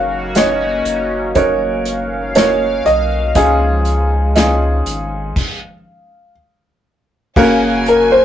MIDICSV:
0, 0, Header, 1, 7, 480
1, 0, Start_track
1, 0, Tempo, 1000000
1, 1614, Time_signature, 4, 2, 24, 8
1, 3960, End_track
2, 0, Start_track
2, 0, Title_t, "Violin section"
2, 0, Program_c, 0, 48
2, 3540, Note_on_c, 0, 80, 96
2, 3960, Note_off_c, 0, 80, 0
2, 3960, End_track
3, 0, Start_track
3, 0, Title_t, "Grand piano"
3, 0, Program_c, 1, 0
3, 0, Note_on_c, 1, 77, 93
3, 177, Note_on_c, 1, 75, 78
3, 180, Note_off_c, 1, 77, 0
3, 636, Note_off_c, 1, 75, 0
3, 651, Note_on_c, 1, 73, 84
3, 1113, Note_off_c, 1, 73, 0
3, 1131, Note_on_c, 1, 73, 91
3, 1372, Note_on_c, 1, 75, 88
3, 1380, Note_off_c, 1, 73, 0
3, 1596, Note_off_c, 1, 75, 0
3, 1612, Note_on_c, 1, 77, 76
3, 3034, Note_off_c, 1, 77, 0
3, 3785, Note_on_c, 1, 70, 75
3, 3897, Note_on_c, 1, 72, 85
3, 3903, Note_off_c, 1, 70, 0
3, 3960, Note_off_c, 1, 72, 0
3, 3960, End_track
4, 0, Start_track
4, 0, Title_t, "Grand piano"
4, 0, Program_c, 2, 0
4, 0, Control_c, 2, 64, 127
4, 0, Note_on_c, 2, 49, 57
4, 0, Note_on_c, 2, 61, 78
4, 0, Note_on_c, 2, 63, 72
4, 0, Note_on_c, 2, 66, 72
4, 0, Note_on_c, 2, 70, 80
4, 147, Note_off_c, 2, 61, 0
4, 148, Note_off_c, 2, 63, 0
4, 149, Note_off_c, 2, 66, 0
4, 149, Note_off_c, 2, 70, 0
4, 170, Note_on_c, 2, 61, 72
4, 172, Note_on_c, 2, 63, 65
4, 172, Note_on_c, 2, 66, 65
4, 175, Note_on_c, 2, 73, 80
4, 394, Note_off_c, 2, 49, 0
4, 628, Note_off_c, 2, 61, 0
4, 629, Note_off_c, 2, 63, 0
4, 629, Note_off_c, 2, 66, 0
4, 631, Note_off_c, 2, 73, 0
4, 648, Note_on_c, 2, 61, 65
4, 650, Note_on_c, 2, 63, 64
4, 650, Note_on_c, 2, 66, 62
4, 652, Note_on_c, 2, 70, 78
4, 1107, Note_off_c, 2, 61, 0
4, 1108, Note_off_c, 2, 63, 0
4, 1108, Note_off_c, 2, 66, 0
4, 1109, Note_off_c, 2, 70, 0
4, 1131, Note_on_c, 2, 61, 69
4, 1133, Note_on_c, 2, 63, 61
4, 1133, Note_on_c, 2, 66, 60
4, 1135, Note_on_c, 2, 70, 75
4, 1589, Note_off_c, 2, 61, 0
4, 1590, Note_off_c, 2, 63, 0
4, 1590, Note_off_c, 2, 66, 0
4, 1591, Note_off_c, 2, 70, 0
4, 1610, Note_on_c, 2, 61, 76
4, 1611, Note_on_c, 2, 63, 74
4, 1612, Note_on_c, 2, 65, 69
4, 1612, Note_on_c, 2, 68, 93
4, 1613, Note_on_c, 2, 44, 54
4, 1620, Control_c, 2, 64, 0
4, 1694, Control_c, 2, 64, 127
4, 2068, Note_off_c, 2, 61, 0
4, 2069, Note_off_c, 2, 63, 0
4, 2069, Note_off_c, 2, 65, 0
4, 2069, Note_off_c, 2, 68, 0
4, 2091, Note_on_c, 2, 61, 69
4, 2091, Note_on_c, 2, 63, 71
4, 2094, Note_on_c, 2, 65, 61
4, 2095, Note_on_c, 2, 68, 80
4, 2314, Note_off_c, 2, 44, 0
4, 2549, Note_off_c, 2, 61, 0
4, 2549, Note_off_c, 2, 63, 0
4, 2550, Note_off_c, 2, 65, 0
4, 2551, Note_off_c, 2, 68, 0
4, 2581, Control_c, 2, 64, 0
4, 3535, Note_on_c, 2, 58, 94
4, 3536, Note_on_c, 2, 49, 68
4, 3536, Note_on_c, 2, 61, 91
4, 3536, Note_on_c, 2, 66, 88
4, 3539, Note_on_c, 2, 70, 109
4, 3636, Control_c, 2, 64, 127
4, 3960, Note_off_c, 2, 49, 0
4, 3960, Note_off_c, 2, 58, 0
4, 3960, Note_off_c, 2, 61, 0
4, 3960, Note_off_c, 2, 66, 0
4, 3960, Note_off_c, 2, 70, 0
4, 3960, End_track
5, 0, Start_track
5, 0, Title_t, "Analog synth pad"
5, 0, Program_c, 3, 89
5, 0, Note_on_c, 3, 51, 64
5, 0, Note_on_c, 3, 54, 72
5, 0, Note_on_c, 3, 58, 77
5, 0, Note_on_c, 3, 61, 67
5, 0, Note_on_c, 3, 66, 86
5, 643, Note_off_c, 3, 66, 0
5, 651, Note_on_c, 3, 77, 89
5, 1593, Note_off_c, 3, 58, 0
5, 1594, Note_off_c, 3, 54, 0
5, 1602, Note_on_c, 3, 53, 70
5, 1606, Note_on_c, 3, 56, 71
5, 2553, Note_off_c, 3, 51, 0
5, 2553, Note_off_c, 3, 61, 0
5, 2553, Note_off_c, 3, 77, 0
5, 2559, Note_off_c, 3, 53, 0
5, 2560, Note_off_c, 3, 56, 0
5, 3535, Note_on_c, 3, 46, 81
5, 3536, Note_on_c, 3, 54, 72
5, 3537, Note_on_c, 3, 49, 75
5, 3537, Note_on_c, 3, 66, 95
5, 3539, Note_on_c, 3, 61, 73
5, 3960, Note_off_c, 3, 46, 0
5, 3960, Note_off_c, 3, 49, 0
5, 3960, Note_off_c, 3, 54, 0
5, 3960, Note_off_c, 3, 61, 0
5, 3960, Note_off_c, 3, 66, 0
5, 3960, End_track
6, 0, Start_track
6, 0, Title_t, "Sub bass"
6, 0, Program_c, 4, 38
6, 0, Note_on_c, 4, 30, 103
6, 394, Note_off_c, 4, 30, 0
6, 409, Note_on_c, 4, 30, 85
6, 1352, Note_off_c, 4, 30, 0
6, 1374, Note_on_c, 4, 35, 87
6, 1597, Note_off_c, 4, 35, 0
6, 1610, Note_on_c, 4, 37, 106
6, 2313, Note_off_c, 4, 37, 0
6, 2331, Note_on_c, 4, 32, 89
6, 2556, Note_off_c, 4, 32, 0
6, 3534, Note_on_c, 4, 30, 101
6, 3960, Note_off_c, 4, 30, 0
6, 3960, End_track
7, 0, Start_track
7, 0, Title_t, "Drums"
7, 169, Note_on_c, 9, 42, 91
7, 173, Note_on_c, 9, 38, 91
7, 217, Note_off_c, 9, 42, 0
7, 221, Note_off_c, 9, 38, 0
7, 410, Note_on_c, 9, 42, 66
7, 458, Note_off_c, 9, 42, 0
7, 649, Note_on_c, 9, 42, 76
7, 651, Note_on_c, 9, 36, 80
7, 697, Note_off_c, 9, 42, 0
7, 699, Note_off_c, 9, 36, 0
7, 890, Note_on_c, 9, 42, 67
7, 938, Note_off_c, 9, 42, 0
7, 1129, Note_on_c, 9, 42, 89
7, 1136, Note_on_c, 9, 38, 93
7, 1177, Note_off_c, 9, 42, 0
7, 1184, Note_off_c, 9, 38, 0
7, 1372, Note_on_c, 9, 42, 61
7, 1420, Note_off_c, 9, 42, 0
7, 1609, Note_on_c, 9, 42, 81
7, 1610, Note_on_c, 9, 36, 103
7, 1657, Note_off_c, 9, 42, 0
7, 1658, Note_off_c, 9, 36, 0
7, 1848, Note_on_c, 9, 42, 61
7, 1896, Note_off_c, 9, 42, 0
7, 2091, Note_on_c, 9, 42, 89
7, 2096, Note_on_c, 9, 38, 91
7, 2139, Note_off_c, 9, 42, 0
7, 2144, Note_off_c, 9, 38, 0
7, 2333, Note_on_c, 9, 42, 66
7, 2381, Note_off_c, 9, 42, 0
7, 2573, Note_on_c, 9, 36, 89
7, 2575, Note_on_c, 9, 49, 75
7, 2621, Note_off_c, 9, 36, 0
7, 2623, Note_off_c, 9, 49, 0
7, 3534, Note_on_c, 9, 36, 101
7, 3537, Note_on_c, 9, 49, 84
7, 3582, Note_off_c, 9, 36, 0
7, 3585, Note_off_c, 9, 49, 0
7, 3774, Note_on_c, 9, 42, 59
7, 3822, Note_off_c, 9, 42, 0
7, 3960, End_track
0, 0, End_of_file